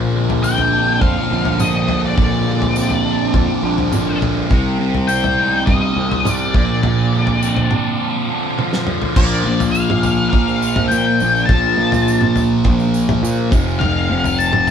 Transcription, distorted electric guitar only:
Already playing: A#2 F3 D4
0.14 D3
0.43 C4
0.72 D4
1.02 F3
1.31 D3
1.60 F3
1.88 D3
2.17 A#2
2.48 D3
2.76 C4
3.05 D4
3.33 F3
3.63 D3
3.91 F3
4.21 D3
4.49 C3
4.79 C3
5.08 C4
5.38 D#4
5.68 G3
5.96 C3
6.25 G3
6.54 A#2
6.83 A#2
7.12 D3
7.41 C4
7.70 D4
7.99 F3
8.29 D3
8.58 F3
8.88 D3
9.16 A#2 F3 A#3
11.48 A#2 F3 A#3
13.51 F2 C3 F3

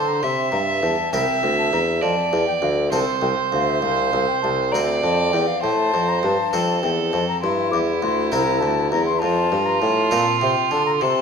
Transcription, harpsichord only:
Already playing: D3
0.23 C3
0.52 G2
0.83 E2
1.13 C2 C4 E4 A#4
1.43 D2
1.73 E2
2.03 F2
2.33 E2
2.62 D2
2.92 C2 C4 F4 A4
3.22 C2
3.52 D2
3.82 C2
4.13 C2
4.44 C2
4.74 D2 C4 F4 A4
5.04 F2
5.33 E2
5.64 A2
5.94 F2
6.23 G2
6.53 F2 C4 F4 A4
6.83 E2
7.13 F2
7.44 G2
7.73 E2
8.02 D2
8.32 C2 C4 E4 A#4
8.63 D2
8.92 E2
9.22 F2
9.52 G2
9.82 A2
10.11 A#2 C4 F4 A4
10.41 C3
10.71 D3
11.01 C3

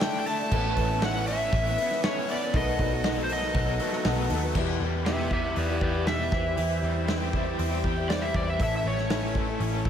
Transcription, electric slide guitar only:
0.03 G5
0.20 G5
0.27 A5
1.04 F#5
1.28 E5
2.05 C#5
2.32 D5
2.57 D#5
3.24 C5
3.33 D#5
5.06 G4 E5
5.33 G4 E5
5.58 B4 D5
5.83 B4 D5
6.08 E5
8.09 D5
8.22 E5
8.36 D5
8.50 E5
8.63 E5
8.76 E5
8.87 C#5

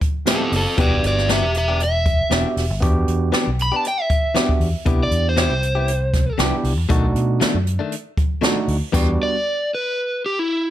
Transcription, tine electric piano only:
0.26 B3 C4 E4 G4
0.77 B3 D4 F#4 G4
2.30 B3 D4 F#4 G4
2.81 B3 D4 F#4 G4
4.34 B3 D4 F#4 G4
4.85 B3 D4 E4 G4
6.38 B3 D4 E4 G4
6.89 A3 D4 D#4 F#4
8.42 A3 D4 D#4 F#4
8.93 G3 B3 D4 F#4

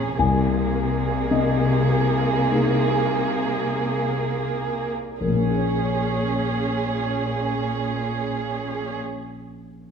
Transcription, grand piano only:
Already playing: A#1 A#3 C#4 G#4 G#5 A#5
0.19 C2 G#5
1.31 C3 D#5
2.51 A#3 D#4 G#4
5.21 A#1 A#4
5.28 A#2
5.35 A#3
5.42 C#4
5.49 G#4
5.56 C#5

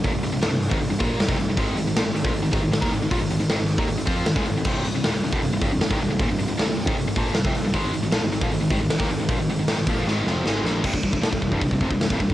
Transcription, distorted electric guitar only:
0.04 D#2 A#2
0.13 C2 G2
0.23 C2 G2
0.32 C2 G2
0.41 C2 G2
0.50 C2 G2
0.69 G#2 D#3
0.80 C2 G2
0.90 C2 G2
0.98 A#2 F3 A#3
1.18 C2 G2
1.28 F2 C3
1.39 C2 G2
1.50 C2 G2
1.57 G#2 D#3 G#3
1.78 G#2 D#3
1.87 G#2 D#3
1.96 A#2 F3
2.05 G#2 D#3
2.15 G#2 D#3
2.24 A#2 F3
2.34 G#2 D#3
2.42 G#2 D#3
2.51 G#2 D#3
2.62 G#2 D#3
2.71 G#2 D#3
2.81 D#3 A#3
2.91 G#2 D#3
3.02 G#2 D#3
3.10 A#2 F3
3.21 G#2 D#3
3.30 G#2 D#3
3.39 G#2 D#3
3.50 G#2 D#3
3.59 G#2 D#3
3.79 D#3 A#3
3.88 G#2 D#3
3.98 G#2 D#3
4.06 F3 C4 F4
4.26 G#2 D#3
4.36 C#3 G#3
4.46 G#2 D#3
4.57 G#2 D#3
4.66 C2 G2 C3
4.86 C2 G2
4.95 C2 G2
5.04 D#2 A#2
5.13 C2 G2
5.23 C2 G2
5.33 D2 A2
5.43 C2 G2
5.53 C2 G2
5.62 C2 G2
5.72 C2 G2
5.81 C2 G2
5.90 G#2 D#3
6.01 C2 G2
6.10 C2 G2
6.20 D#2 A#2
6.30 C2 G2
6.38 C2 G2
6.48 C2 G2
6.57 C2 G2
6.67 C2 G2
6.87 G#2 D#3
6.98 C2 G2
7.07 C2 G2
7.17 A#2 F3 A#3
7.36 C2 G2
7.46 F2 C3
7.57 C2 G2
7.65 C2 G2
7.74 G#2 D#3 G#3
7.92 G#2 D#3
8.03 G#2 D#3
8.11 A#2 F3
8.23 G#2 D#3
8.32 G#2 D#3
8.42 A#2 F3
8.53 G#2 D#3
8.60 G#2 D#3
8.71 G#2 D#3
8.81 G#2 D#3
8.90 G#2 D#3
8.99 D#3 A#3
9.10 G#2 D#3
9.20 G#2 D#3
9.29 A#2 F3
9.39 G#2 D#3
9.50 G#2 D#3
9.59 G#2 D#3
9.68 G#2 D#3
9.78 G#2 D#3
9.88 A#2 F3
9.99 A#2 F3
10.08 G#2 D#3 G#3
10.27 F2 C3 F3
10.45 G#2 D#3 G#3
10.64 A#2 F3 A#3
10.84 C2 G2
10.93 C2 G2
11.03 C2 G2
11.12 C2 G2
11.21 A#2 F3
11.31 C2 G2
11.42 C2 G2
11.52 C2 G2
11.63 C2 G2
11.73 C2 G2
11.81 F2 C3
11.92 C2 G2
12.03 C2 G2
12.11 C2 G2
12.20 C2 G2

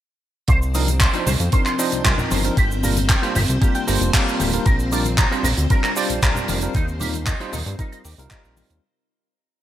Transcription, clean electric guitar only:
0.49 C5
0.75 D#5
1.01 C6
1.14 C5
1.27 C5
1.53 C5
1.66 C6
1.79 D#5
2.05 C6
2.31 C5
2.57 G4
2.83 A#4
3.09 G5
3.22 G4
3.35 G4
3.61 G4
3.75 G5
3.87 A#4
4.14 G5
4.40 G4
4.65 A#4
4.92 D5
5.18 A#5
5.32 A#4
5.44 A#4
5.71 A#4
5.84 A#5
5.97 D5
6.23 A#5
6.49 A#4
6.75 D#4
7.00 G4
7.26 D#5
7.40 D#4
7.53 D#4
7.79 D#4
7.92 D#5
8.05 G4
8.31 D#5
8.57 D#4

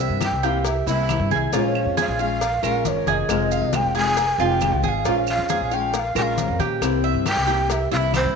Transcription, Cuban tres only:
0.00 E5
0.43 G4
0.87 E4
1.31 G#4
1.53 F4
1.97 G#4
2.19 F5
2.63 A#4
3.08 G#4
3.52 F5
3.95 G#4
4.40 F4
4.84 G#4
5.06 F4
5.50 G#4
5.71 F5
6.16 A#4
6.60 G4
7.04 E5
7.47 G4
7.92 E4

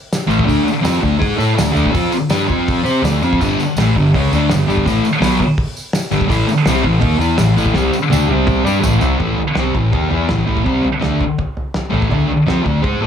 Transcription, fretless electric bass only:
0.28 A1
0.48 D2
0.64 muted fretless electric bass stroke
0.84 F2
1.03 D2
1.22 G#2
1.38 A2
1.57 D2
1.76 D2
1.94 F2
2.11 muted fretless electric bass stroke
2.30 G2
2.49 F2
2.84 C3
3.02 D2
3.22 F2
3.41 G1
3.76 A1
3.95 G1
4.14 C#2
4.32 D2
4.50 G1
4.68 G1
4.86 A1
5.20 B1
6.11 G1
6.30 A1
6.66 C2
6.84 A1
7.02 D#2
7.18 E2
7.38 A1
7.57 A1
7.74 C2
7.94 muted fretless electric bass stroke
8.12 D2
8.30 C2
8.66 G2
8.85 A1
9.01 C2
9.20 A1
9.55 C2
9.75 A1
9.92 D#2
10.11 E2
10.29 A1
10.46 A1
10.66 C2
11.02 D2
11.92 A1
12.11 D2
12.46 F2
12.65 D2
12.84 G#2
13.00 A2

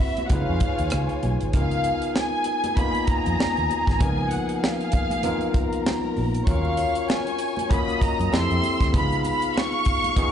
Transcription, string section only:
Already playing: F#4 E5 B5
0.30 F4 C#5 G#5
1.55 G#4 G#5
5.55 A#4 A#5
6.47 C#5 C#6
7.70 D#5 D#6
8.32 E5 E6
8.94 F5 F6

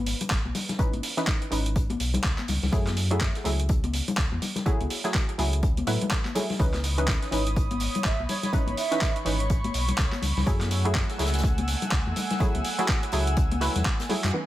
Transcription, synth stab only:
Already playing: E3 C#4 D#4 B4
0.79 E3 C#4 D#4 B4
1.17 E3 C#4 D#4 B4
1.51 E3 C#4 D#4 B4
2.72 F#3 A3 E4 G#4
3.11 F#3 A3 E4 G#4
3.44 F#3 A3 E4 G#4
4.66 F#3 A3 E4 G#4
5.04 F#3 A3 E4 G#4
5.38 F#3 A3 E4 G#4
5.87 F#3 A3 E4 B4
6.35 F#3 A3 E4 G#4
6.59 E3 C#4 D#4 B4
6.98 E3 C#4 D#4 B4
7.31 E3 C#4 D#4 B4
8.53 E3 C#4 D#4 B4
8.91 E3 C#4 D#4 B4
9.25 E3 C#4 D#4 B4
10.46 F#3 A3 E4 G#4
10.85 F#3 A3 E4 G#4
11.18 F#3 A3 E4 G#4
12.40 F#3 A3 E4 G#4
12.78 F#3 A3 E4 G#4
13.12 F#3 A3 E4 G#4
13.61 F#3 A3 E4 B4
14.09 F#3 A3 E4 G#4
14.33 E3 C#4 D#4 B4

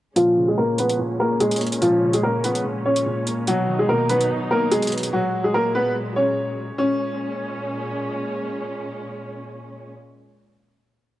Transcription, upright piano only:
0.16 F3 F4
0.48 G#3 G#4
0.58 A#3 A#4
0.79 B3 B4
1.20 A#3 A#4
1.40 G#3 G#4
1.82 F3 F4
2.14 G#3 G#4
2.23 A#3 A#4
2.44 B3 B4
2.85 C#4 C#5
3.47 F#3 F#4
3.79 G#3 G#4
3.89 A#3 A#4
4.09 B3 B4
4.51 A#3 A#4
4.72 G#3 G#4
5.13 F#3 F#4
5.44 G#3 G#4
5.54 A#3 A#4
5.75 B3 B4
6.16 C#4 C#5
6.78 C#4

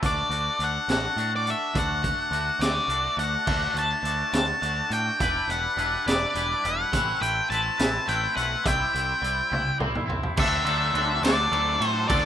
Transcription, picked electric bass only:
0.03 D2
0.29 D2
0.59 D2
0.88 A1
1.16 A2
1.75 D2
2.31 D2
2.59 D2
2.88 C2
3.17 D2
3.47 D2
3.74 D2
4.03 D2
4.33 D2
4.62 D2
4.90 A2
5.20 E1
5.48 E1
5.77 E1
6.06 E1
6.35 E1
6.65 E1
6.93 A1
7.21 A1
7.50 A1
7.79 A1
8.08 A1
8.37 B1
8.65 C2
8.94 C2
9.22 C2
9.52 C2
9.80 C2
10.09 C2
10.38 D2
10.64 D2
10.94 D2
11.22 D2
11.52 D2
11.80 A2
12.10 D2

